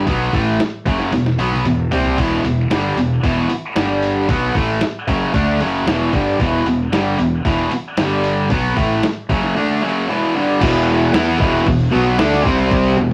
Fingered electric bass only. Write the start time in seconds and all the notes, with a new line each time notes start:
0.07 B1
0.33 A1
0.60 muted fingered electric bass stroke
0.86 F#1
1.13 E1
1.39 B1
1.66 E1
1.92 C2
2.18 E1
2.44 E1
2.71 G1
2.96 E1
3.24 E1
3.50 muted fingered electric bass stroke
3.76 G1
4.29 B1
4.55 A1
4.81 muted fingered electric bass stroke
5.08 F#1
5.34 D2
5.60 F#1
5.86 E1
6.13 G1
6.40 E1
6.65 E1
6.92 G1
7.19 E1
7.45 E1
7.71 muted fingered electric bass stroke
7.97 G1
8.50 B1
8.77 A1
9.03 muted fingered electric bass stroke
9.29 F#1
10.61 E1
11.14 E2
11.40 E1
11.66 E1
11.93 B1
12.19 D2
12.45 C2
12.97 E1